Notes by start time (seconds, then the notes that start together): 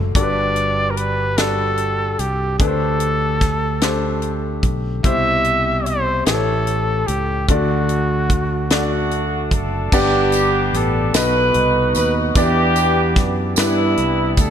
Already playing: F#1 D3 A3 D4 F#4 C5
0.15 G1 G2 G3 D4 F#4 A4 D5, kick, closed hi-hat
0.23 B4
0.56 closed hi-hat
0.91 A#4
0.97 B4, closed hi-hat
1.38 G3 D4 F#4 A4 D5, snare, closed hi-hat
1.77 closed hi-hat
2.19 C2 G4, closed hi-hat
2.59 D2 D3 A3 D4 G4 A4 B4, kick, closed hi-hat
2.68 C5
3.00 closed hi-hat
3.41 kick, snare, closed hi-hat
3.81 A3 D4 G4 C5, snare, closed hi-hat
4.22 closed hi-hat
4.63 B1, kick, closed hi-hat
5.04 C2 B2 C3 E4 G4 C5 E5, kick, closed hi-hat
5.44 closed hi-hat
5.86 C5, closed hi-hat
6.26 A1 A2 A3 E4 G4 A4 B4, snare, closed hi-hat
6.34 C#5
6.67 closed hi-hat
7.07 C#2 G4, closed hi-hat
7.48 D2 D3 A3 D4 F#4 D5, kick, closed hi-hat
7.89 closed hi-hat
8.30 kick, closed hi-hat
8.70 A3 D4 F#4 D5, snare, closed hi-hat
9.11 closed hi-hat
9.51 F#1 A4, kick, closed hi-hat
9.92 G1 G2 B3 D4 G4 D5 F#5, kick, crash, tambourine
10.32 closed hi-hat, tambourine
10.73 A1 A4, closed hi-hat
11.14 B1 B2 B3 D#4 F#4 A4 B4 D#5, snare, closed hi-hat, tambourine
11.54 C2, closed hi-hat
11.95 D#2 B4, closed hi-hat, tambourine
12.35 E2 E3 B3 D4 E4 G4 D5, kick, closed hi-hat, tambourine
12.76 closed hi-hat, tambourine
13.16 F#2, kick, snare, closed hi-hat
13.56 G2 G3 B3 D4 E4 G4 B4, snare, closed hi-hat, tambourine
13.97 C2, closed hi-hat
14.37 D2 A4, kick, closed hi-hat, tambourine